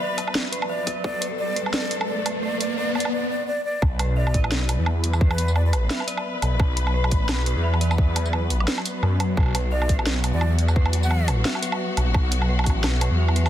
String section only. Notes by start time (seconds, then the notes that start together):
Already playing: F#3 B3 B4
1.04 A4
3.82 F#3 B3 B4
9.37 F#4